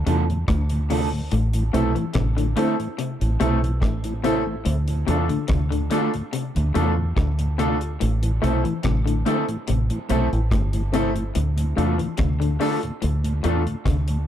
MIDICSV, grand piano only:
0, 0, Header, 1, 2, 480
1, 0, Start_track
1, 0, Key_signature, 0, "minor"
1, 0, Tempo, 835655
1, 761, Time_signature, 4, 2, 24, 8
1, 8197, End_track
2, 0, Start_track
2, 0, Title_t, "Grand piano"
2, 0, Program_c, 0, 0
2, 997, Note_on_c, 0, 57, 87
2, 997, Note_on_c, 0, 60, 76
2, 1001, Note_on_c, 0, 64, 88
2, 1003, Note_on_c, 0, 69, 104
2, 1096, Note_off_c, 0, 57, 0
2, 1096, Note_off_c, 0, 60, 0
2, 1098, Note_off_c, 0, 64, 0
2, 1099, Note_off_c, 0, 69, 0
2, 1477, Note_on_c, 0, 57, 92
2, 1478, Note_on_c, 0, 60, 89
2, 1480, Note_on_c, 0, 64, 90
2, 1483, Note_on_c, 0, 69, 99
2, 1576, Note_off_c, 0, 57, 0
2, 1576, Note_off_c, 0, 60, 0
2, 1577, Note_off_c, 0, 64, 0
2, 1579, Note_off_c, 0, 69, 0
2, 1952, Note_on_c, 0, 57, 99
2, 1955, Note_on_c, 0, 60, 79
2, 1958, Note_on_c, 0, 64, 92
2, 1959, Note_on_c, 0, 69, 97
2, 2053, Note_off_c, 0, 57, 0
2, 2055, Note_off_c, 0, 60, 0
2, 2056, Note_off_c, 0, 64, 0
2, 2057, Note_off_c, 0, 69, 0
2, 2434, Note_on_c, 0, 57, 94
2, 2436, Note_on_c, 0, 60, 82
2, 2438, Note_on_c, 0, 64, 89
2, 2442, Note_on_c, 0, 69, 107
2, 2534, Note_off_c, 0, 57, 0
2, 2536, Note_off_c, 0, 60, 0
2, 2537, Note_off_c, 0, 64, 0
2, 2539, Note_off_c, 0, 69, 0
2, 2565, Note_on_c, 0, 64, 25
2, 2565, Note_on_c, 0, 69, 28
2, 2612, Note_off_c, 0, 64, 0
2, 2612, Note_off_c, 0, 69, 0
2, 2913, Note_on_c, 0, 57, 83
2, 2916, Note_on_c, 0, 62, 82
2, 2918, Note_on_c, 0, 65, 81
2, 2921, Note_on_c, 0, 69, 91
2, 3014, Note_off_c, 0, 57, 0
2, 3015, Note_off_c, 0, 62, 0
2, 3017, Note_off_c, 0, 65, 0
2, 3018, Note_off_c, 0, 69, 0
2, 3396, Note_on_c, 0, 57, 82
2, 3398, Note_on_c, 0, 62, 84
2, 3401, Note_on_c, 0, 65, 79
2, 3403, Note_on_c, 0, 69, 103
2, 3496, Note_off_c, 0, 57, 0
2, 3497, Note_off_c, 0, 62, 0
2, 3498, Note_off_c, 0, 65, 0
2, 3499, Note_off_c, 0, 69, 0
2, 3874, Note_on_c, 0, 57, 86
2, 3877, Note_on_c, 0, 62, 84
2, 3880, Note_on_c, 0, 65, 90
2, 3881, Note_on_c, 0, 69, 104
2, 3974, Note_off_c, 0, 57, 0
2, 3976, Note_off_c, 0, 62, 0
2, 3977, Note_off_c, 0, 65, 0
2, 3978, Note_off_c, 0, 69, 0
2, 4356, Note_on_c, 0, 57, 89
2, 4358, Note_on_c, 0, 62, 91
2, 4361, Note_on_c, 0, 65, 96
2, 4361, Note_on_c, 0, 69, 106
2, 4456, Note_off_c, 0, 57, 0
2, 4457, Note_off_c, 0, 62, 0
2, 4458, Note_off_c, 0, 65, 0
2, 4458, Note_off_c, 0, 69, 0
2, 4487, Note_on_c, 0, 65, 23
2, 4488, Note_on_c, 0, 69, 27
2, 4533, Note_off_c, 0, 65, 0
2, 4534, Note_off_c, 0, 69, 0
2, 4835, Note_on_c, 0, 57, 88
2, 4838, Note_on_c, 0, 60, 81
2, 4839, Note_on_c, 0, 64, 73
2, 4842, Note_on_c, 0, 69, 102
2, 4935, Note_off_c, 0, 57, 0
2, 4936, Note_off_c, 0, 60, 0
2, 4937, Note_off_c, 0, 64, 0
2, 4939, Note_off_c, 0, 69, 0
2, 5319, Note_on_c, 0, 57, 90
2, 5322, Note_on_c, 0, 60, 85
2, 5325, Note_on_c, 0, 64, 84
2, 5327, Note_on_c, 0, 69, 102
2, 5417, Note_off_c, 0, 57, 0
2, 5419, Note_off_c, 0, 60, 0
2, 5420, Note_off_c, 0, 64, 0
2, 5421, Note_off_c, 0, 69, 0
2, 5803, Note_on_c, 0, 57, 95
2, 5805, Note_on_c, 0, 60, 87
2, 5807, Note_on_c, 0, 64, 85
2, 5810, Note_on_c, 0, 69, 107
2, 5899, Note_off_c, 0, 57, 0
2, 5900, Note_off_c, 0, 60, 0
2, 5901, Note_off_c, 0, 64, 0
2, 5902, Note_off_c, 0, 69, 0
2, 6282, Note_on_c, 0, 57, 96
2, 6285, Note_on_c, 0, 60, 91
2, 6287, Note_on_c, 0, 64, 89
2, 6288, Note_on_c, 0, 69, 114
2, 6379, Note_off_c, 0, 57, 0
2, 6380, Note_off_c, 0, 60, 0
2, 6381, Note_off_c, 0, 64, 0
2, 6382, Note_off_c, 0, 69, 0
2, 6409, Note_on_c, 0, 64, 22
2, 6409, Note_on_c, 0, 69, 27
2, 6454, Note_off_c, 0, 64, 0
2, 6454, Note_off_c, 0, 69, 0
2, 6760, Note_on_c, 0, 57, 86
2, 6761, Note_on_c, 0, 62, 72
2, 6764, Note_on_c, 0, 65, 86
2, 6766, Note_on_c, 0, 69, 92
2, 6858, Note_off_c, 0, 57, 0
2, 6858, Note_off_c, 0, 62, 0
2, 6859, Note_off_c, 0, 65, 0
2, 6861, Note_off_c, 0, 69, 0
2, 7238, Note_on_c, 0, 57, 87
2, 7239, Note_on_c, 0, 62, 77
2, 7242, Note_on_c, 0, 65, 81
2, 7245, Note_on_c, 0, 69, 111
2, 7336, Note_off_c, 0, 57, 0
2, 7337, Note_off_c, 0, 62, 0
2, 7338, Note_off_c, 0, 65, 0
2, 7340, Note_off_c, 0, 69, 0
2, 7721, Note_on_c, 0, 57, 95
2, 7723, Note_on_c, 0, 62, 75
2, 7726, Note_on_c, 0, 65, 90
2, 7727, Note_on_c, 0, 69, 93
2, 7818, Note_off_c, 0, 57, 0
2, 7819, Note_off_c, 0, 62, 0
2, 7820, Note_off_c, 0, 65, 0
2, 7821, Note_off_c, 0, 69, 0
2, 8197, End_track
0, 0, End_of_file